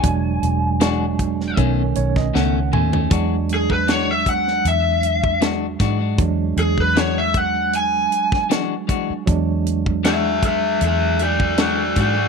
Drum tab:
HH |x-x-x-x-x-x-----|x-x-x-x-x-x-x-x-|x-x-x-x-x-x-x-x-|x-x-x-x-x-x-x-x-|
SD |----o--o---oo---|----o--o----o-o-|----o------oo---|----o-------o---|
T2 |--------------o-|----------------|----------------|----------------|
FT |---------------o|----------------|----------------|----------------|
BD |o-----o-o--o----|o--o--o----o--o-|o--o--o----o--o-|o--o--o----o--o-|